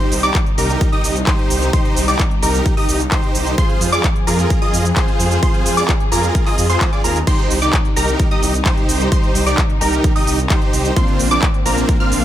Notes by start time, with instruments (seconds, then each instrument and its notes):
Already playing: string section C3 G3 D#4, supersaw synth D#4 G4 C5, synth pluck C6
0.00 closed hi-hat
0.12 detuned saw bass C2, open hi-hat, cabasa
0.23 supersaw synth D#4 G4 D5, synth pluck D6, closed hi-hat, cabasa
0.35 kick, clap, closed hi-hat, cabasa
0.46 closed hi-hat
0.58 detuned saw bass C2, supersaw synth D#4 G4 A#4, synth pluck A#5, open hi-hat, cabasa
0.70 closed hi-hat, cabasa
0.81 kick, closed hi-hat, cabasa
0.92 supersaw synth D#4 G4 D#5, synth pluck D#6, closed hi-hat
1.04 detuned saw bass C2, open hi-hat, cabasa
1.16 closed hi-hat, cabasa
1.27 supersaw synth D#4 G4 C5, synth pluck C6, kick, clap, closed hi-hat, cabasa
1.39 closed hi-hat
1.50 detuned saw bass C2, open hi-hat, cabasa
1.62 closed hi-hat, cabasa
1.73 supersaw synth D#4 G4 C5, synth pluck C6, kick, closed hi-hat, cabasa
1.85 closed hi-hat
1.96 detuned saw bass C2, open hi-hat, cabasa
2.08 supersaw synth D#4 G4 D5, synth pluck D6, closed hi-hat, cabasa
2.19 kick, clap, closed hi-hat, cabasa
2.31 closed hi-hat
2.42 detuned saw bass C2, supersaw synth D#4 G4 A#4, synth pluck A#5, open hi-hat, cabasa
2.54 closed hi-hat, cabasa
2.66 kick, closed hi-hat, cabasa
2.77 supersaw synth D#4 G4 D#5, synth pluck D#6, open hi-hat
2.89 detuned saw bass C2, open hi-hat, cabasa
3.00 closed hi-hat, cabasa
3.12 supersaw synth D#4 G4 C5, synth pluck C6, kick, clap, closed hi-hat, cabasa
3.23 closed hi-hat
3.35 detuned saw bass C2, open hi-hat, cabasa
3.46 closed hi-hat, cabasa
3.58 string section F3 C4 G#4, supersaw synth F4 G#4 C5, synth pluck C6, kick, closed hi-hat, cabasa
3.70 closed hi-hat
3.81 detuned saw bass F2, open hi-hat, cabasa
3.92 supersaw synth F4 G#4 D5, synth pluck D6, closed hi-hat, cabasa
4.04 kick, clap, closed hi-hat, cabasa
4.16 closed hi-hat
4.27 detuned saw bass F2, supersaw synth F4 G#4 A#4, synth pluck A#5, open hi-hat, cabasa
4.39 closed hi-hat, cabasa
4.50 kick, closed hi-hat, cabasa
4.62 supersaw synth F4 G#4 D#5, synth pluck D#6, closed hi-hat
4.73 detuned saw bass F2, open hi-hat, cabasa
4.85 closed hi-hat, cabasa
4.96 supersaw synth F4 G#4 C5, synth pluck C6, kick, clap, closed hi-hat, cabasa
5.08 closed hi-hat
5.20 detuned saw bass F2, open hi-hat, cabasa
5.31 closed hi-hat, cabasa
5.43 supersaw synth F4 G#4 C5, synth pluck C6, kick, closed hi-hat, cabasa
5.54 closed hi-hat
5.66 detuned saw bass F2, open hi-hat, cabasa
5.77 supersaw synth F4 G#4 D5, synth pluck D6, closed hi-hat, cabasa
5.88 kick, clap, closed hi-hat, cabasa
6.00 closed hi-hat
6.12 detuned saw bass F2, supersaw synth F4 G#4 A#4, synth pluck A#5, open hi-hat, cabasa
6.23 closed hi-hat, cabasa
6.35 kick, closed hi-hat, cabasa
6.46 supersaw synth F4 G#4 D#5, synth pluck D#6, clap, open hi-hat
6.58 detuned saw bass F2, open hi-hat, cabasa
6.69 supersaw synth F4 G#4 C5, synth pluck C6, closed hi-hat, cabasa
6.81 kick, clap, closed hi-hat, cabasa
6.93 supersaw synth F4 G#4 D5, synth pluck D6, closed hi-hat
7.04 detuned saw bass D#2, supersaw synth F4 G#4 A#4, synth pluck A#5, open hi-hat, cabasa
7.16 closed hi-hat, cabasa
7.27 string section C3 G3 D#4, supersaw synth D#4 G4 C5, synth pluck C6, kick, closed hi-hat, crash, cabasa
7.39 closed hi-hat
7.50 detuned saw bass C2, open hi-hat, cabasa
7.62 supersaw synth D#4 G4 D5, synth pluck D6, closed hi-hat, cabasa
7.73 kick, clap, closed hi-hat, cabasa
7.85 closed hi-hat
7.96 detuned saw bass C2, supersaw synth D#4 G4 A#4, synth pluck A#5, open hi-hat, cabasa
8.08 closed hi-hat, cabasa
8.19 kick, closed hi-hat, cabasa
8.31 supersaw synth D#4 G4 D#5, synth pluck D#6, closed hi-hat
8.43 detuned saw bass C2, open hi-hat, cabasa
8.54 closed hi-hat, cabasa
8.65 supersaw synth D#4 G4 C5, synth pluck C6, kick, clap, closed hi-hat, cabasa
8.77 closed hi-hat
8.89 detuned saw bass C2, open hi-hat, cabasa
9.00 closed hi-hat, cabasa
9.12 supersaw synth D#4 G4 C5, synth pluck C6, kick, closed hi-hat, cabasa
9.24 closed hi-hat
9.35 detuned saw bass C2, open hi-hat, cabasa
9.46 supersaw synth D#4 G4 D5, synth pluck D6, closed hi-hat, cabasa
9.58 kick, clap, closed hi-hat, cabasa
9.70 closed hi-hat
9.81 detuned saw bass C2, supersaw synth D#4 G4 A#4, synth pluck A#5, open hi-hat, cabasa
9.93 closed hi-hat, cabasa
10.04 kick, closed hi-hat, cabasa
10.16 supersaw synth D#4 G4 D#5, synth pluck D#6, open hi-hat
10.27 detuned saw bass C2, open hi-hat, cabasa
10.39 closed hi-hat, cabasa
10.50 supersaw synth D#4 G4 C5, synth pluck C6, kick, clap, closed hi-hat, cabasa
10.62 closed hi-hat
10.73 detuned saw bass C2, open hi-hat, cabasa
10.85 closed hi-hat, cabasa
10.96 string section D3 A#3 C4, supersaw synth A#3 C4 D4 F4 C5, synth pluck C6, kick, closed hi-hat, cabasa
11.08 closed hi-hat
11.19 detuned saw bass A#1, open hi-hat, cabasa
11.31 supersaw synth A#3 C4 D4 F4 D5, synth pluck D6, closed hi-hat, cabasa
11.42 kick, clap, closed hi-hat, cabasa
11.54 closed hi-hat
11.66 detuned saw bass A#1, supersaw synth A#3 C4 D4 F4 A#4, synth pluck A#5, open hi-hat, cabasa
11.77 closed hi-hat, cabasa
11.89 kick, closed hi-hat, cabasa
12.00 supersaw synth A#3 C4 D4 F4 F5, synth pluck F6, closed hi-hat
12.12 detuned saw bass A#1, open hi-hat, cabasa